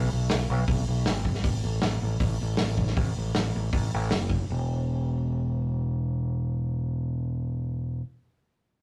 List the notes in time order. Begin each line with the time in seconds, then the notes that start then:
0.12 B1
0.30 B1, snare, open hi-hat
0.50 B1
0.68 B1, kick, open hi-hat
0.88 B1
1.06 G#1, snare, open hi-hat
1.25 kick
1.34 snare
1.44 A1, kick, open hi-hat
1.64 A1
1.82 A1, snare, open hi-hat
2.02 A1
2.20 A1, kick, open hi-hat
2.41 A1
2.57 A1, snare, open hi-hat
2.77 kick
2.87 snare
2.97 A1, kick, open hi-hat
3.17 A1
3.35 A1, snare, open hi-hat
3.55 A1
3.73 A1, kick, open hi-hat
3.94 A1
4.11 F#1, snare, open hi-hat
4.30 kick
4.50 E1